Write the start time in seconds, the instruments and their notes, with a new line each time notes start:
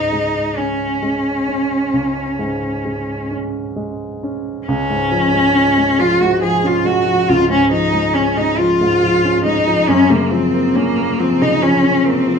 Already playing: grand piano C#2 G#2, cello D#4
0.12 grand piano G#3
0.57 cello C#4, grand piano C#4
1.03 grand piano G#3
1.48 grand piano C#4
1.93 grand piano C#2
2.39 grand piano G#2
2.85 grand piano G#3
3.31 grand piano C#4
3.76 grand piano G#3
4.23 grand piano C#4
4.67 grand piano C#2, cello C#4
4.90 grand piano G#2
5.12 grand piano F3
5.34 grand piano G#3
5.55 grand piano C#4
5.77 grand piano G#3
5.99 grand piano F3, cello F4
6.21 grand piano G#2, cello F#4
6.42 grand piano F3, cello G#4
6.64 grand piano C#4, cello F4
6.85 grand piano G#3, cello F#4
7.07 grand piano F3
7.29 grand piano C#2, cello F4
7.50 grand piano G#2, cello C#4
7.71 grand piano F3, cello D#4
7.93 grand piano G#3
8.14 cello C#4, grand piano C#4
8.36 grand piano G#3, cello D#4
8.58 grand piano F3, cello F4
8.81 grand piano G#2
9.03 grand piano F3
9.24 grand piano C#4
9.45 grand piano G#3, cello D#4
9.67 grand piano F3
9.88 grand piano F#2, cello C#4
10.10 grand piano C#3, cello A#3
10.31 grand piano F3, cello C4
10.54 grand piano A#3
10.75 cello A#3, grand piano C#4
10.97 grand piano A#3
11.19 grand piano F3, cello C4
11.41 grand piano C#3, cello D#4
11.62 grand piano F3, cello C#4
11.83 grand piano C#4
12.05 grand piano A#3, cello C4
12.27 grand piano F3